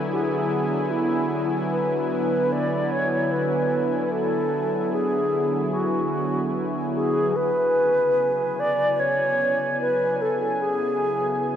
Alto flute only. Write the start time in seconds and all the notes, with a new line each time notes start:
Already playing: A4
0.11 G#4
0.91 E4
1.72 B4
2.10 B4
2.52 D5
2.92 C#5
3.32 B4
4.11 A4
4.93 G#4
5.73 F#4
6.95 G#4
7.36 B4
8.59 D5
8.99 C#5
9.81 B4
10.21 A4
10.62 G#4